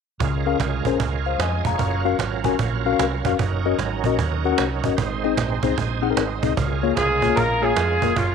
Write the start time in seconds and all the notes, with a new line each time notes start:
0.19 C#2 C#3 G#3 C#4 F4 A#4, cajon bass
0.46 C#4 G#4 A#4 F5, cajon slap
0.60 C2, cajon bass, cajon slap
0.85 A#1 C#4 G#4 A#4 C5, cajon bass
1.00 C#2, cajon bass
1.26 C5 F5, cajon slap
1.38 F2 D#5 G#5, cajon slap
1.64 F1 G#4 C#5 F5 A#5, cajon bass, cajon slap
1.72 cajon slap
1.77 F#1 F#3 C#4 F4 A#4, cajon bass
2.05 C#4 F#4 A#4 F5, cajon slap
2.19 G#1, cajon bass, cajon slap
2.44 C#4 F#4 A#4 G#5, cajon bass
2.59 A#1, cajon bass
2.86 C#4 F#4 A#4 F5, cajon slap
2.93 C#4 F#4 A#4 F5
2.99 C2, cajon slap
3.25 F1 C#4 F#4 A#4 F5, cajon bass, cajon slap
3.33 cajon slap
3.37 F#1 F#3 C#4 D#4 A#4, cajon bass
3.66 C#4 F#4 A#4 D#5, cajon slap
3.79 G#1, cajon bass, cajon slap
4.04 A#1 C#4 F#4 A#4 D#5, cajon bass
4.19 D#2, cajon bass
4.44 C#4 F#4 A#4 F#5, cajon slap
4.52 C#4 F#4 A#4 F#5
4.58 C2, cajon slap
4.83 G1 C#4 F#4 A#4 D#5, cajon bass, cajon slap
4.91 cajon slap
4.96 G#1 G#2 G#3 C4 D#4 C5, cajon bass
5.24 C4 D#4 G#4 D#5, cajon slap
5.37 A#1, cajon bass, cajon slap
5.63 C2 C4 D#4 G#4 C5 A#5, cajon bass
5.76 A#1 G#5, cajon bass
6.01 C4 D#4 G#4 F5 F#5, cajon slap
6.10 C4 D#4 G#4 A#4
6.16 G#1 D#5, cajon slap
6.40 C2 C4 D#4 G#4 D#5, cajon bass, cajon slap
6.50 cajon slap
6.56 C#2 C#3 G#3 C#4 F4 A#4, cajon bass
6.83 A#3 F4 G#4 C#5, cajon slap
6.95 C2 F4 G#4, cajon bass, cajon slap
7.22 A#3 F4 G#4 C#5, cajon bass
7.29 A#3 F4 G#4 C#5
7.36 A#1 F4 A#4, cajon bass
7.62 A#3 F4 G#4 C#5, cajon slap
7.76 F2, cajon slap
8.01 F1 A#3 F4 G#4 A#4, cajon bass, cajon slap
8.16 F#1 F#3 A#3 C#4 F4 A#4, cajon bass